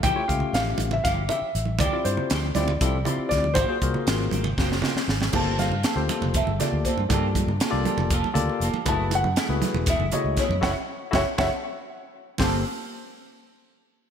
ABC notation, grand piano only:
X:1
M:7/8
L:1/16
Q:1/4=119
K:Gdor
V:1 name="Grand piano"
g4 f3 e f2 e4 | d2 c4 d4 z2 d2 | c8- c2 z4 | a2 f6 e2 d2 c2- |
c4 z8 z2 | a2 ^f6 e2 _e2 ^c2 | [^ce^f]2 z2 [cef]2 [cef]2 z6 | z12 z2 |]